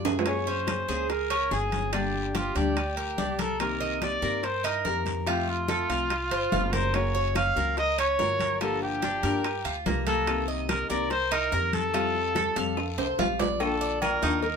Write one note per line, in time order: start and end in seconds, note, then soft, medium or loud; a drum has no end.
0.00 0.83 F#2 loud
0.00 0.25 D3 soft
0.00 0.26 D4 soft
0.00 0.26 F4 medium
0.05 0.25 G#4 medium
0.05 low bongo loud
0.05 high conga medium
0.05 high timbale loud
0.05 short guiro medium
0.19 low timbale loud
0.26 0.66 F#3 medium
0.26 0.67 A#3 medium
0.26 0.67 C#4 medium
0.26 0.68 G#4 medium
0.26 0.50 C#5 medium
0.26 high bongo medium
0.26 high timbale medium
0.26 long guiro medium
0.26 claves medium
0.46 0.87 C#4 medium
0.46 1.12 C5 medium
0.46 high bongo soft
0.46 high conga soft
0.67 0.88 F#3 soft
0.67 0.88 A#3 soft
0.67 0.88 C#4 soft
0.67 0.87 G#4 soft
0.67 high bongo medium
0.67 high conga medium
0.67 high timbale medium
0.67 short guiro medium
0.67 claves medium
0.88 1.47 C#2 medium
0.88 1.09 A#3 medium
0.88 1.09 C#4 medium
0.88 1.09 G#4 medium
0.88 1.29 G#4 medium
0.88 high bongo soft
0.88 high conga soft
0.88 short guiro medium
1.09 1.54 A#4 medium
1.09 muted nylon-string guitar stroke medium
1.09 high bongo medium
1.09 high conga soft
1.09 high timbale medium
1.09 long guiro medium
1.30 1.51 C#4 medium
1.30 high conga soft
1.30 high timbale medium
1.30 claves medium
1.51 2.50 G1 medium
1.51 1.92 F#3 medium
1.51 1.92 A#3 soft
1.51 1.93 C#4 soft
1.51 1.92 G#4 medium
1.51 1.93 G#4 medium
1.51 1.93 G#4 soft
1.51 high bongo soft
1.51 low bongo medium
1.51 high conga soft
1.51 short guiro medium
1.72 high bongo soft
1.72 high conga medium
1.72 high timbale medium
1.72 short guiro medium
1.93 2.34 D3 medium
1.93 2.33 G3 medium
1.93 2.34 A#3 medium
1.93 2.34 D4 medium
1.93 2.35 D4 medium
1.93 2.37 G4 medium
1.93 2.35 G4 medium
1.93 high bongo medium
1.93 high timbale medium
1.93 long guiro medium
1.93 claves medium
2.14 high bongo soft
2.14 high conga soft
2.35 2.55 G3 soft
2.35 2.55 A#3 soft
2.35 2.55 D4 soft
2.35 2.58 F4 medium
2.35 2.55 G4 medium
2.35 2.54 G4 soft
2.35 high bongo medium
2.35 high conga medium
2.35 high timbale medium
2.35 short guiro medium
2.55 3.14 D2 medium
2.55 2.76 G3 medium
2.55 2.76 A#3 medium
2.55 2.76 D4 medium
2.55 2.76 G4 medium
2.55 3.42 G4 medium
2.55 2.96 D5 medium
2.55 high bongo soft
2.55 high conga soft
2.55 high timbale medium
2.55 short guiro medium
2.77 muted nylon-string guitar stroke medium
2.77 high bongo medium
2.77 high conga soft
2.77 high timbale medium
2.77 long guiro medium
2.77 claves medium
2.97 3.18 A#4 medium
2.97 high conga soft
2.97 high timbale medium
3.18 4.17 C2 medium
3.18 3.59 G3 medium
3.18 3.59 A#3 soft
3.18 3.38 D4 medium
3.18 3.60 D4 soft
3.18 3.60 G4 medium
3.18 high bongo soft
3.18 low bongo medium
3.18 high conga medium
3.18 short guiro medium
3.39 3.60 A4 medium
3.39 3.79 A#4 medium
3.39 high bongo soft
3.39 high conga medium
3.39 high timbale medium
3.39 short guiro medium
3.59 4.01 C3 medium
3.59 4.01 D#3 medium
3.59 4.01 A#3 medium
3.59 4.01 C4 medium
3.59 4.02 G4 medium
3.59 3.99 A#4 medium
3.59 high bongo medium
3.59 high conga soft
3.59 high timbale medium
3.59 long guiro medium
3.59 claves medium
3.81 4.21 D#5 medium
3.81 high bongo soft
3.81 high conga soft
4.02 4.22 D#3 soft
4.02 4.22 A#3 soft
4.02 4.22 C4 soft
4.02 4.21 G4 soft
4.02 4.46 D5 loud
4.02 high bongo medium
4.02 high conga medium
4.02 high timbale medium
4.02 short guiro medium
4.02 claves medium
4.22 4.81 G2 medium
4.22 4.43 D#3 medium
4.22 4.43 A#3 medium
4.22 4.43 C4 medium
4.22 4.43 G4 medium
4.22 4.63 A#4 medium
4.22 high bongo soft
4.22 high conga soft
4.22 short guiro medium
4.43 4.67 C5 medium
4.43 muted nylon-string guitar stroke medium
4.43 high bongo medium
4.43 high conga soft
4.43 high timbale medium
4.43 long guiro medium
4.64 4.85 D#4 medium
4.64 5.00 A#4 medium
4.64 high conga soft
4.64 high timbale loud
4.64 claves medium
4.85 5.84 F2 loud
4.85 5.26 D#3 soft
4.85 5.27 A#3 soft
4.85 5.27 C4 medium
4.85 5.27 G4 medium
4.85 5.26 A#4 medium
4.85 high bongo soft
4.85 low bongo medium
4.85 high conga soft
4.85 short guiro medium
5.05 high bongo soft
5.05 high conga medium
5.05 high timbale medium
5.05 short guiro medium
5.27 5.68 C3 medium
5.27 5.68 F3 medium
5.27 5.68 A3 medium
5.27 5.69 C4 medium
5.27 5.68 F4 medium
5.27 5.69 F4 medium
5.27 5.51 G4 medium
5.27 high bongo medium
5.27 high conga soft
5.27 high timbale medium
5.27 long guiro medium
5.27 claves medium
5.47 6.75 F4 loud
5.47 high bongo soft
5.47 high conga soft
5.68 5.89 F3 soft
5.68 5.89 A3 soft
5.68 5.89 C4 soft
5.68 5.88 F4 medium
5.68 5.89 A4 medium
5.68 high bongo medium
5.68 high conga medium
5.68 high timbale medium
5.68 short guiro medium
5.89 6.28 C2 medium
5.89 6.10 F3 medium
5.89 6.10 A3 medium
5.89 6.10 C4 medium
5.89 6.10 F4 medium
5.89 6.30 F5 medium
5.89 high bongo soft
5.89 high conga soft
5.89 high timbale medium
5.89 short guiro medium
6.10 muted nylon-string guitar stroke medium
6.10 high bongo medium
6.10 high conga soft
6.10 high timbale medium
6.10 long guiro medium
6.10 claves medium
6.31 6.51 G1 medium
6.31 6.52 C5 medium
6.31 high conga soft
6.31 high timbale medium
6.52 7.51 F#1 loud
6.52 6.93 F3 soft
6.52 6.94 A3 soft
6.52 6.94 C4 soft
6.52 6.73 F4 medium
6.52 6.94 F4 medium
6.52 high bongo soft
6.52 low bongo medium
6.52 high conga loud
6.52 low timbale medium
6.52 short guiro medium
6.73 7.14 A#4 medium
6.73 6.96 C5 medium
6.73 high bongo soft
6.73 high conga medium
6.73 high timbale medium
6.73 short guiro medium
6.94 7.35 C#3 medium
6.94 7.34 F#3 medium
6.94 7.35 A#3 medium
6.94 7.36 C#4 medium
6.94 7.36 F#4 medium
6.94 7.36 C#5 medium
6.94 high bongo medium
6.94 high timbale medium
6.94 long guiro medium
6.94 claves medium
7.15 7.55 C#5 medium
7.15 high bongo soft
7.15 high conga soft
7.35 7.56 F#3 soft
7.35 7.56 A#3 soft
7.35 7.55 C#4 soft
7.35 7.55 F#4 soft
7.35 7.75 F5 loud
7.35 high bongo medium
7.35 high conga medium
7.35 high timbale medium
7.35 short guiro medium
7.35 claves medium
7.56 8.15 C#2 medium
7.56 7.76 F#3 medium
7.56 7.76 A#3 medium
7.56 7.77 C#4 medium
7.56 7.76 F#4 medium
7.56 7.97 A#4 medium
7.56 high bongo soft
7.56 high conga soft
7.56 short guiro medium
7.77 8.00 D#5 loud
7.77 muted nylon-string guitar stroke medium
7.77 high bongo medium
7.77 high conga soft
7.77 high timbale medium
7.77 long guiro medium
7.98 8.19 C#4 medium
7.98 8.61 C#5 loud
7.98 high conga soft
7.98 high timbale medium
7.98 claves medium
8.18 9.17 G1 loud
8.18 8.60 F#3 soft
8.18 8.60 A#3 soft
8.18 8.60 C#4 soft
8.18 8.61 F#4 soft
8.18 8.60 A#4 medium
8.18 high bongo soft
8.18 low bongo medium
8.18 high conga soft
8.18 low timbale medium
8.18 short guiro medium
8.40 high bongo soft
8.40 high conga medium
8.40 high timbale medium
8.40 short guiro medium
8.61 9.02 D3 medium
8.61 9.01 F3 medium
8.61 9.01 A#3 medium
8.61 9.02 A#3 medium
8.61 9.02 D4 medium
8.61 9.03 G4 medium
8.61 8.81 A4 medium
8.61 high bongo medium
8.61 high conga soft
8.61 high timbale medium
8.61 long guiro medium
8.61 claves medium
8.82 9.76 G4 loud
8.82 high bongo soft
8.82 high conga soft
9.02 9.22 F3 soft
9.02 9.23 A#3 soft
9.02 9.23 D4 medium
9.02 9.22 D4 soft
9.02 9.22 G4 medium
9.02 high bongo medium
9.02 high conga medium
9.02 high timbale medium
9.02 short guiro medium
9.23 9.62 G2 medium
9.23 9.43 F3 medium
9.23 9.43 A#3 medium
9.23 9.43 D4 medium
9.23 9.43 G4 medium
9.23 9.64 A#4 medium
9.23 high bongo soft
9.23 high conga soft
9.23 high timbale medium
9.23 short guiro medium
9.44 muted nylon-string guitar stroke medium
9.44 high bongo medium
9.44 high conga soft
9.44 high timbale medium
9.44 long guiro medium
9.44 claves medium
9.65 9.84 D2 medium
9.65 9.85 F4 medium
9.65 high conga soft
9.65 high timbale medium
9.86 10.84 C2 medium
9.86 10.27 F3 soft
9.86 10.05 A#3 medium
9.86 10.27 A#3 soft
9.86 10.27 D4 soft
9.86 10.28 G4 soft
9.86 high bongo soft
9.86 low bongo medium
9.86 high conga loud
9.86 low timbale medium
9.86 short guiro medium
10.06 10.47 A#3 medium
10.06 10.46 A4 medium
10.06 high bongo soft
10.06 high conga medium
10.06 high timbale medium
10.06 short guiro medium
10.27 10.68 C3 medium
10.27 10.67 D#3 medium
10.27 10.69 A#3 medium
10.27 10.69 C4 medium
10.27 10.69 G4 medium
10.27 high bongo medium
10.27 high conga soft
10.27 high timbale loud
10.27 long guiro medium
10.27 claves medium
10.48 10.89 D#5 medium
10.48 high bongo soft
10.48 high conga soft
10.69 10.89 D#3 soft
10.69 10.89 A#3 soft
10.69 10.89 C4 soft
10.69 10.88 G4 soft
10.69 10.89 A#4 loud
10.69 high bongo medium
10.69 high conga medium
10.69 high timbale medium
10.69 short guiro medium
10.69 claves medium
10.89 11.48 C2 medium
10.89 11.10 D#3 medium
10.89 11.10 A#3 medium
10.89 11.10 C4 medium
10.89 11.10 G4 medium
10.89 11.30 A#4 medium
10.89 11.09 D5 medium
10.89 high bongo soft
10.89 high conga soft
10.89 short guiro medium
11.10 11.34 C5 loud
11.10 muted nylon-string guitar stroke medium
11.10 high bongo medium
11.10 high conga soft
11.10 high timbale medium
11.10 long guiro medium
11.31 11.52 D#4 medium
11.31 11.75 A#4 loud
11.31 high conga soft
11.31 high timbale loud
11.31 claves medium
11.52 12.50 F2 medium
11.52 11.93 D#3 soft
11.52 11.93 A#3 soft
11.52 11.94 C4 medium
11.52 11.94 G4 soft
11.52 11.93 A#4 medium
11.52 high bongo soft
11.52 low bongo medium
11.52 high conga soft
11.52 short guiro medium
11.73 13.19 A4 loud
11.73 high bongo soft
11.73 high conga medium
11.73 high timbale medium
11.73 short guiro medium
11.93 12.34 F3 medium
11.93 12.35 G3 medium
11.93 12.35 C4 medium
11.93 12.34 F4 medium
11.93 12.35 G4 medium
11.93 high bongo medium
11.93 high conga soft
11.93 high timbale medium
11.93 long guiro medium
11.93 claves medium
12.14 high bongo soft
12.14 high conga soft
12.35 12.55 F3 medium
12.35 12.56 G3 soft
12.35 12.56 C4 soft
12.35 12.55 G4 medium
12.35 12.56 A4 medium
12.35 high bongo medium
12.35 high conga medium
12.35 high timbale medium
12.35 short guiro medium
12.56 12.95 F2 medium
12.56 12.76 G3 medium
12.56 12.77 C4 medium
12.56 12.76 G4 medium
12.56 12.97 F5 medium
12.56 high bongo soft
12.56 high conga soft
12.56 high timbale medium
12.56 short guiro medium
12.77 muted nylon-string guitar stroke medium
12.77 high bongo medium
12.77 high conga soft
12.77 high timbale medium
12.77 long guiro medium
12.77 claves medium
12.98 13.17 C2 medium
12.98 13.18 C5 medium
12.98 high conga soft
12.98 high timbale loud
13.18 14.17 A#1 medium
13.18 13.59 F3 medium
13.18 13.59 G3 soft
13.18 13.60 C4 medium
13.18 13.39 F4 medium
13.18 13.60 G4 medium
13.18 high bongo soft
13.18 low bongo medium
13.18 high conga medium
13.18 low timbale medium
13.18 short guiro medium
13.39 13.60 D5 medium
13.39 high bongo soft
13.39 high conga medium
13.39 low timbale medium
13.39 short guiro medium
13.59 14.00 D3 medium
13.59 14.01 A#3 medium
13.59 14.01 D4 medium
13.59 14.02 F4 medium
13.59 13.99 A4 medium
13.59 cowbell loud
13.59 high conga soft
13.59 low agogo medium
13.59 long guiro medium
13.59 claves medium
13.81 14.21 D5 medium
13.81 high conga soft
14.01 14.21 D3 medium
14.01 14.22 A#3 soft
14.01 14.22 D4 soft
14.01 14.21 F4 medium
14.01 14.40 A#4 medium
14.01 cowbell medium
14.01 high conga medium
14.01 low agogo loud
14.01 short guiro medium
14.01 claves medium
14.22 14.56 D#2 medium
14.22 14.43 A#3 medium
14.22 14.43 D4 medium
14.22 14.56 D#4 medium
14.22 14.42 F4 medium
14.22 cowbell medium
14.22 high conga soft
14.22 low agogo medium
14.22 short guiro medium
14.43 14.56 A#4 loud
14.43 muted nylon-string guitar stroke medium
14.43 cowbell loud
14.43 high conga soft
14.43 long guiro medium